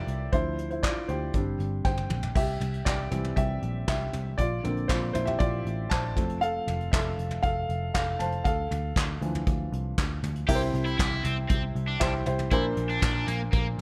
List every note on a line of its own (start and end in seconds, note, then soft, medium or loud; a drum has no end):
0.00 0.34 A3 soft
0.00 0.34 C4 medium
0.00 0.34 D4 medium
0.00 0.34 E4 medium
0.00 0.34 F4 medium
0.00 0.34 G4 medium
0.00 0.34 A4 medium
0.00 0.34 A#4 medium
0.00 0.32 C5 medium
0.00 0.34 D5 medium
0.00 0.34 E5 medium
0.07 0.28 C2 medium
0.07 closed hi-hat medium
0.32 0.93 D2 medium
0.32 1.30 F3 soft
0.32 1.31 D4 soft
0.32 0.69 E4 medium
0.32 0.69 C5 medium
0.32 kick medium
0.32 closed hi-hat medium
0.58 closed hi-hat medium
0.70 0.83 E4 medium
0.70 0.84 C5 medium
0.70 closed hi-hat soft
0.83 0.90 F4 medium
0.83 0.89 D5 medium
0.83 kick loud
0.83 snare loud
0.83 clap medium
0.83 closed hi-hat medium
1.08 1.30 D2 medium
1.08 2.07 G4 medium
1.08 1.84 C5 medium
1.08 closed hi-hat medium
1.33 1.55 G1 medium
1.33 2.07 G3 soft
1.33 2.07 C4 soft
1.33 2.07 D4 medium
1.33 kick medium
1.33 closed hi-hat medium
1.59 1.80 G1 medium
1.59 closed hi-hat medium
1.85 2.06 G1 medium
1.85 2.33 C5 medium
1.85 2.37 G5 medium
1.85 kick loud
1.85 snare soft
1.97 high tom soft
2.10 2.31 A#1 medium
2.10 mid tom medium
2.23 floor tom medium
2.35 2.56 C2 medium
2.35 2.84 G4 medium
2.35 2.88 E5 medium
2.35 kick loud
2.35 crash medium
2.61 2.82 C2 medium
2.61 closed hi-hat medium
2.61 floor tom soft
2.74 closed hi-hat soft
2.85 3.07 C2 medium
2.85 3.34 G4 medium
2.85 3.38 D5 medium
2.85 kick loud
2.85 snare loud
2.85 clap medium
2.85 closed hi-hat medium
3.11 3.33 C2 medium
3.11 4.34 E3 soft
3.11 4.34 G3 soft
3.11 4.35 C4 medium
3.11 closed hi-hat medium
3.11 floor tom medium
3.24 floor tom medium
3.36 3.58 C2 medium
3.36 3.85 G4 medium
3.36 3.86 E5 medium
3.36 kick medium
3.36 closed hi-hat medium
3.62 3.83 A#1 medium
3.62 closed hi-hat medium
3.88 4.09 C2 medium
3.88 4.36 G4 medium
3.88 4.40 E5 medium
3.88 kick loud
3.88 snare loud
3.88 clap medium
3.88 closed hi-hat medium
4.13 4.34 C2 medium
4.13 closed hi-hat medium
4.13 floor tom medium
4.38 4.59 A#1 medium
4.38 4.87 F4 medium
4.38 4.91 D5 medium
4.38 kick medium
4.38 closed hi-hat medium
4.63 4.85 A#1 medium
4.63 4.97 D3 medium
4.63 4.98 A#3 soft
4.63 4.98 C4 medium
4.63 closed hi-hat medium
4.63 floor tom soft
4.77 closed hi-hat soft
4.88 5.10 A#1 medium
4.88 5.14 F4 medium
4.88 5.12 C5 medium
4.88 kick loud
4.88 snare loud
4.88 clap medium
4.88 closed hi-hat medium
5.13 5.36 A#1 medium
5.13 5.27 E4 medium
5.13 5.27 C5 medium
5.13 closed hi-hat medium
5.13 floor tom medium
5.26 5.32 G4 medium
5.26 5.31 E5 medium
5.26 floor tom medium
5.39 5.61 A#1 medium
5.39 5.88 F4 medium
5.39 5.92 D5 medium
5.39 kick loud
5.39 closed hi-hat medium
5.65 5.86 A1 medium
5.65 closed hi-hat medium
5.90 6.17 A#1 medium
5.90 6.39 C5 medium
5.90 6.43 A5 medium
5.90 kick loud
5.90 snare loud
5.90 clap medium
5.90 closed hi-hat medium
6.16 6.58 F1 medium
6.16 6.50 F3 soft
6.16 6.50 A3 soft
6.16 6.51 C4 soft
6.16 kick medium
6.16 closed hi-hat medium
6.16 floor tom medium
6.29 closed hi-hat soft
6.41 6.90 A4 medium
6.41 6.89 F5 medium
6.41 closed hi-hat medium
6.67 6.88 F1 medium
6.67 closed hi-hat medium
6.67 floor tom medium
6.80 closed hi-hat soft
6.92 7.14 F1 medium
6.92 7.41 A4 medium
6.92 7.45 E5 medium
6.92 kick loud
6.92 snare loud
6.92 clap medium
6.92 closed hi-hat medium
7.18 7.39 F1 medium
7.18 closed hi-hat medium
7.31 floor tom medium
7.43 7.65 F1 medium
7.43 7.92 A4 medium
7.43 7.93 F5 medium
7.43 kick medium
7.43 closed hi-hat medium
7.69 7.90 F1 medium
7.69 closed hi-hat soft
7.94 8.16 F1 medium
7.94 8.19 A4 medium
7.94 8.21 F5 medium
7.94 kick medium
7.94 snare loud
7.94 clap medium
7.94 closed hi-hat medium
8.19 8.41 F1 medium
8.19 8.27 C5 medium
8.19 8.25 A5 medium
8.19 closed hi-hat medium
8.19 floor tom medium
8.32 closed hi-hat soft
8.44 8.66 D2 loud
8.44 10.20 A4 medium
8.44 10.19 F5 medium
8.44 kick loud
8.44 closed hi-hat medium
8.71 8.92 D2 medium
8.71 closed hi-hat medium
8.71 floor tom medium
8.96 9.17 D2 medium
8.96 kick loud
8.96 snare loud
8.96 clap medium
8.96 closed hi-hat medium
9.21 9.42 D2 medium
9.21 9.56 E3 medium
9.21 9.55 F3 soft
9.21 9.55 D4 soft
9.21 closed hi-hat medium
9.35 floor tom medium
9.47 9.68 D2 medium
9.47 kick loud
9.47 closed hi-hat medium
9.72 9.93 C2 medium
9.72 closed hi-hat medium
9.98 10.19 D2 medium
9.98 kick loud
9.98 snare loud
9.98 clap medium
9.98 closed hi-hat medium
10.23 10.44 D2 medium
10.23 closed hi-hat medium
10.23 floor tom medium
10.35 closed hi-hat soft
10.48 10.70 C2 medium
10.48 11.21 C3 medium
10.48 11.34 E4 medium
10.48 10.60 G4 loud
10.48 11.34 G4 medium
10.48 10.55 A#4 medium
10.48 kick loud
10.48 crash loud
10.55 11.37 C5 loud
10.74 10.95 C2 loud
10.74 closed hi-hat medium
10.86 10.98 E4 medium
10.86 closed hi-hat soft
10.99 11.20 C2 medium
10.99 11.23 E4 medium
10.99 kick loud
10.99 snare loud
10.99 clap medium
10.99 closed hi-hat medium
11.24 11.45 C2 medium
11.24 11.37 C4 medium
11.24 closed hi-hat medium
11.24 floor tom medium
11.49 11.71 C2 medium
11.49 11.62 C4 medium
11.49 kick loud
11.49 closed hi-hat medium
11.75 11.96 C2 medium
11.75 closed hi-hat medium
11.88 12.12 D4 medium
12.00 12.22 C2 loud
12.00 12.22 E4 medium
12.00 12.22 G4 medium
12.00 12.22 C5 medium
12.00 kick loud
12.00 snare loud
12.00 clap loud
12.00 closed hi-hat medium
12.26 12.48 C2 medium
12.26 12.47 E4 medium
12.26 12.48 G4 medium
12.26 12.48 C5 medium
12.26 closed hi-hat medium
12.26 floor tom medium
12.38 closed hi-hat medium
12.38 floor tom medium
12.51 12.73 A#1 medium
12.51 13.24 A#2 medium
12.51 13.37 D4 medium
12.51 12.64 E4 medium
12.51 13.37 A#4 medium
12.51 13.38 C5 loud
12.51 kick loud
12.51 closed hi-hat medium
12.77 12.98 A#1 medium
12.77 closed hi-hat medium
12.89 13.01 D4 medium
12.89 closed hi-hat soft
13.02 13.23 A#1 medium
13.02 13.26 D4 medium
13.02 kick loud
13.02 snare loud
13.02 clap loud
13.02 closed hi-hat medium
13.27 13.48 A#1 medium
13.27 13.40 A#3 medium
13.27 closed hi-hat medium
13.27 floor tom medium
13.52 13.74 A#1 medium
13.52 13.65 A#3 medium
13.52 kick loud
13.52 closed hi-hat medium